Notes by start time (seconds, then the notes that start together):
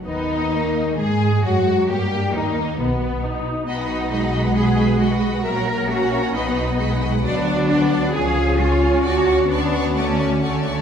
0.05 D#2 D#3 B3 D#4
0.52 A#3
0.98 G#2 G#3 G#4
1.43 F#2 F#3 F#4
1.89 G2 G3 A#3 G4
2.35 D#2 D#3 D#4
2.78 B1 B2 B3
3.24 D#4
3.67 B1 B3 D#4 F#4 D#5 B5
3.78 B4 F#5
3.88 F#4 D#5 B5
4.01 B4 F#5
4.11 G#3 F#4 D#5 B5
4.22 B4 F#5
4.33 F#4 D#5 B5
4.44 B4 F#5
4.55 F#4 G#4 D#5 B5
4.65 B4 F#5
4.77 F#4 D#5 B5
4.88 B4 F#5
4.99 F#4 D#5 B5
5.10 B4 F#5
5.21 F#4 D#5 B5
5.33 B4 F#5
5.43 A#1 F#3 A#3 A#4 E5 A#5
5.55 C#5 F#5
5.66 A#4 E5 A#5
5.78 C#5 F#5
5.88 C#4 F#4 A#4 E5 A#5
5.99 C#5 F#5
6.11 A#4 E5 A#5
6.22 C#5 F#5
6.34 B1 B3 D#4 F#4 D#5 B5
6.47 B4 F#5
6.57 F#4 D#5 B5
6.67 B4 F#5
6.79 G#3 F#4 D#5 B5
6.91 B4 F#5
7.02 F#4 D#5 B5
7.12 B4 F#5
7.24 D2 F#3 D4 F#4 D5 F#5
7.36 B4 D5 F#5
7.46 D5 F#5
7.57 B4 D5 F#5
7.69 D5 F#5
7.80 B4 D5 F#5
7.91 D5 F#5
8.02 B4 D5 F#5
8.13 C#2 F3 C#4 F4 G#4 C#5 G#5
8.23 G#4 C#5 F5
8.34 G#4 C#5
8.39 G#5
8.46 G#4 C#5
8.50 F5
8.57 C#4 F4 G#4 C#5 G#5
8.70 G#4 C#5 F5
8.82 G#4 C#5 G#5
8.92 G#4 C#5 F5
9.03 D2 F#4 D5 F#5
9.07 C#6
9.16 C#5 D5 A5
9.27 D5 F#5 C#6
9.39 C#5 D5 A5
9.49 B3 D4 D5 F#5 C#6
9.61 C#5 D5 A5
9.72 D5 F#5 C#6
9.84 C#5 D5 A5
9.95 A3 C#4 D5 F#5 C#6
10.05 C#5 D5 A5
10.18 D5 F#5 C#6
10.29 C#5 D5 A5
10.41 A3 D5 F#5 C#6
10.52 C#5 D5 A5
10.63 D5 F#5 C#6
10.74 C#5 D5 A5